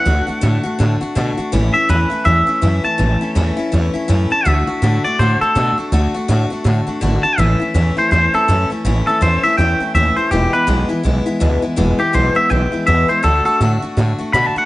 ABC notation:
X:1
M:4/4
L:1/8
Q:"Swing" 1/4=164
K:A
V:1 name="Clean electric guitar"
f4- f z3 | z e B2 e3 a- | a4- a z2 a | e3 d =c A2 z |
z6 z a | e3 =c c A2 z | z A =c e =g2 e c | =G B z6 |
z =G =c e =g2 e c | A A z4 (3b a f |]
V:2 name="Steel-string acoustic guitar"
[D,A,DF] [A,DF] [D,A,DF] [A,DF] [D,A,DF] [A,DF] [D,A,DF] [A,DF] | [A,,E,A,CE] [A,CE] [A,,E,A,CE] [A,CE] [E,A,CE] [A,CE] [A,,E,A,CE] [A,CE] | [A,,E,A,CE] [A,CE] [A,,E,A,CE] [A,CE] [E,A,CE] [A,CE] [A,,E,A,CE] [A,CE] | [D,A,DF] [A,DF] [D,A,DF] [A,DF] [D,A,DF] [A,DF] [D,A,DF] [A,DF] |
[D,A,DF] [A,DF] [D,A,DF] [A,DF] [D,A,DF] [A,DF] [D,A,DF] [A,DF] | [A,,E,A,CE] [A,CE] [A,,E,A,CE] [A,CE] [E,A,CE] [A,CE] [A,,E,A,CE] [A,CE] | [A,,E,A,CE] [A,CE] [A,,E,A,CE] [A,CE] [E,A,CE] [A,CE] [A,,E,A,CE] [A,CE] | [E,,B,,E,G,B,E] [E,G,B,E] [E,,B,,E,G,B,E] [E,G,B,E] [E,G,B,E] [E,G,B,E] [E,,B,,E,G,B,E] [E,G,B,E] |
[E,,B,,E,G,B,E] [E,G,B,E] [E,,B,,E,G,B,E] [E,G,B,E] [E,G,B,E] [E,G,B,E] [E,,B,,E,G,B,E] [E,G,B,E] | [D,A,DF] [A,DF] [D,A,DF] [A,DF] [D,A,DF] [A,DF] [D,A,DF] [A,DF] |]
V:3 name="Upright bass" clef=bass
D,, z A,, z A,, z B,, z | A,,, z E,, z E,, z F,, z | A,,, z E,, z E,, z F,, z | D,, z A,, z A,, z B,, z |
D,, z A,, z A,, z G,,, z | A,,, z E,, z E,, z F,, z | A,,, z E,, z E,, z ^D,, z | E,,, z B,,, z B,,, z D,, z |
E,,, z B,,, z B,,, z E,, z | D,, z A,, z A,, z B,, z |]